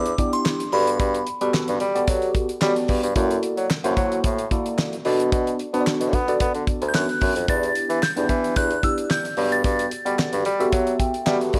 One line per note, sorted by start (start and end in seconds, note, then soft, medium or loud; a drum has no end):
0.00 0.14 E2 loud
0.00 0.30 D6 loud
0.06 closed hi-hat medium
0.18 0.62 B3 medium
0.18 0.62 D4 medium
0.18 0.62 E4 medium
0.18 0.62 G4 medium
0.18 0.62 D5 medium
0.18 kick loud
0.18 closed hi-hat medium
0.33 0.74 C6 medium
0.33 closed hi-hat medium
0.45 snare loud
0.45 clap medium
0.60 closed hi-hat soft
0.72 0.95 G2 loud
0.72 1.27 B3 medium
0.72 1.27 F#4 medium
0.72 1.27 G4 medium
0.72 1.27 A4 medium
0.72 1.27 D5 medium
0.72 1.50 B5 medium
0.72 open hi-hat medium
0.87 closed hi-hat medium
1.00 1.22 G2 loud
1.00 kick loud
1.00 closed hi-hat medium
1.14 closed hi-hat medium
1.27 closed hi-hat medium
1.41 1.52 G3 medium
1.41 1.83 B3 medium
1.41 1.83 F#4 medium
1.41 1.83 G4 medium
1.41 1.83 A4 medium
1.41 1.83 B4 loud
1.41 closed hi-hat medium
1.54 snare loud
1.54 clap medium
1.68 1.78 G2 loud
1.68 closed hi-hat medium
1.80 2.03 G3 loud
1.80 closed hi-hat medium
1.95 2.48 B3 loud
1.95 2.48 F#4 medium
1.95 2.48 G4 medium
1.95 2.49 A4 medium
1.95 2.49 D5 loud
1.95 closed hi-hat medium
2.08 2.30 F#3 loud
2.08 kick loud
2.08 closed hi-hat loud
2.22 closed hi-hat soft
2.35 kick loud
2.35 closed hi-hat medium
2.49 closed hi-hat soft
2.61 2.74 G3 loud
2.61 3.05 B3 medium
2.61 3.05 F#4 medium
2.61 3.05 G4 medium
2.61 3.05 A4 medium
2.61 2.69 C#5 medium
2.61 snare loud
2.61 clap medium
2.69 3.09 D5 loud
2.76 closed hi-hat soft
2.88 3.01 G2 loud
2.88 kick medium
2.88 open hi-hat medium
3.03 3.14 G2 loud
3.03 closed hi-hat medium
3.15 3.38 F#2 loud
3.15 3.69 A#3 medium
3.15 3.69 E4 medium
3.15 3.69 F#4 medium
3.15 3.69 A4 medium
3.15 3.69 D5 loud
3.15 kick loud
3.15 closed hi-hat medium
3.31 closed hi-hat medium
3.43 closed hi-hat medium
3.57 3.68 F#3 medium
3.57 closed hi-hat medium
3.70 snare loud
3.70 clap loud
3.84 3.95 F#2 loud
3.84 4.37 A#3 loud
3.84 4.38 E4 medium
3.84 4.38 F#4 loud
3.84 4.38 A4 medium
3.84 4.38 C5 loud
3.84 closed hi-hat medium
3.97 4.19 F#3 loud
3.97 kick medium
3.97 closed hi-hat medium
4.12 closed hi-hat soft
4.24 4.46 A2 loud
4.24 kick loud
4.24 closed hi-hat loud
4.38 closed hi-hat medium
4.51 4.94 A#3 medium
4.51 4.95 E4 medium
4.51 4.95 F#4 medium
4.51 4.95 A4 medium
4.51 4.95 D5 medium
4.51 kick loud
4.51 closed hi-hat medium
4.66 closed hi-hat medium
4.78 snare loud
4.78 clap medium
4.93 closed hi-hat medium
5.05 5.27 B2 loud
5.05 5.59 B3 medium
5.05 5.59 D4 medium
5.05 5.59 F#4 medium
5.05 5.59 A4 medium
5.05 5.60 D5 loud
5.05 open hi-hat medium
5.20 closed hi-hat medium
5.32 5.54 B2 loud
5.32 kick loud
5.32 closed hi-hat medium
5.47 closed hi-hat medium
5.59 closed hi-hat medium
5.74 6.15 B3 loud
5.74 5.84 B3 loud
5.74 6.15 D4 medium
5.74 6.16 F#4 medium
5.74 6.16 A4 medium
5.74 5.80 C5 medium
5.74 closed hi-hat medium
5.81 6.19 D5 loud
5.87 snare loud
5.87 clap loud
6.00 6.15 B2 medium
6.00 closed hi-hat medium
6.13 6.35 B3 loud
6.13 kick medium
6.13 closed hi-hat medium
6.28 6.81 B3 medium
6.28 6.81 D4 medium
6.28 6.81 F#4 medium
6.28 6.81 A4 medium
6.28 6.81 D5 loud
6.28 closed hi-hat medium
6.40 6.52 B3 loud
6.40 kick loud
6.40 closed hi-hat loud
6.55 6.65 D3 medium
6.55 closed hi-hat medium
6.67 kick loud
6.67 closed hi-hat medium
6.81 6.92 D2 loud
6.81 closed hi-hat medium
6.88 6.95 G6 medium
6.94 7.06 F#2 loud
6.94 7.37 B3 medium
6.94 7.37 D4 medium
6.94 7.38 F#4 medium
6.94 7.38 A4 medium
6.94 7.38 B4 medium
6.94 7.50 F#6 loud
6.94 snare loud
6.94 clap medium
7.09 closed hi-hat soft
7.21 7.33 F#2 loud
7.21 kick loud
7.21 open hi-hat medium
7.35 7.46 F2 medium
7.35 closed hi-hat medium
7.48 7.71 E2 loud
7.48 8.02 B3 medium
7.48 8.02 D4 medium
7.48 8.02 E4 medium
7.48 8.02 G4 medium
7.48 8.02 D5 medium
7.48 8.05 A6 loud
7.48 kick loud
7.48 closed hi-hat medium
7.63 closed hi-hat medium
7.75 closed hi-hat medium
7.89 8.00 E3 loud
7.89 closed hi-hat medium
8.03 8.58 G6 loud
8.03 snare loud
8.03 clap medium
8.16 8.27 E2 medium
8.16 8.70 B3 medium
8.16 8.70 D4 medium
8.16 8.70 E4 medium
8.16 8.70 G4 medium
8.16 8.70 D5 medium
8.16 closed hi-hat medium
8.29 8.52 E3 loud
8.29 kick medium
8.29 closed hi-hat medium
8.44 closed hi-hat medium
8.56 8.79 E2 loud
8.56 8.82 F#6 loud
8.56 kick loud
8.56 closed hi-hat loud
8.71 closed hi-hat medium
8.83 9.27 B3 medium
8.83 9.27 D4 medium
8.83 9.27 E4 medium
8.83 9.27 G4 medium
8.83 9.27 D5 medium
8.83 9.11 E6 medium
8.83 kick loud
8.83 closed hi-hat medium
8.98 closed hi-hat medium
9.10 9.53 G6 loud
9.10 snare loud
9.10 clap medium
9.25 closed hi-hat medium
9.37 9.60 G2 loud
9.37 9.91 B3 medium
9.37 9.91 F#4 medium
9.37 9.91 G4 medium
9.37 9.92 A4 medium
9.37 9.45 C#5 medium
9.37 open hi-hat medium
9.44 9.95 D5 medium
9.52 10.29 A6 medium
9.52 closed hi-hat medium
9.64 9.87 G2 loud
9.64 kick loud
9.64 closed hi-hat medium
9.79 closed hi-hat medium
9.91 closed hi-hat medium
10.05 10.16 G3 medium
10.05 10.48 B3 medium
10.05 10.48 F#4 medium
10.05 10.48 G4 medium
10.05 10.48 A4 medium
10.05 10.48 D5 medium
10.05 closed hi-hat medium
10.19 snare loud
10.19 clap loud
10.33 10.43 G2 loud
10.33 closed hi-hat medium
10.45 10.68 G3 loud
10.45 closed hi-hat medium
10.60 11.13 B3 medium
10.60 11.13 F#4 medium
10.60 11.13 G4 medium
10.60 11.13 A4 medium
10.60 11.13 E5 loud
10.60 closed hi-hat medium
10.72 10.95 F#3 loud
10.72 kick loud
10.72 closed hi-hat loud
10.87 closed hi-hat medium
11.00 11.25 G5 medium
11.00 kick loud
11.00 closed hi-hat medium
11.14 closed hi-hat medium
11.26 11.38 G3 loud
11.26 11.60 B3 medium
11.26 11.60 F#4 medium
11.26 11.60 G4 medium
11.26 11.60 A4 medium
11.26 11.60 B4 loud
11.26 11.60 E5 medium
11.26 snare loud
11.26 clap medium
11.41 closed hi-hat medium
11.53 11.60 G2 medium
11.53 kick medium
11.53 open hi-hat medium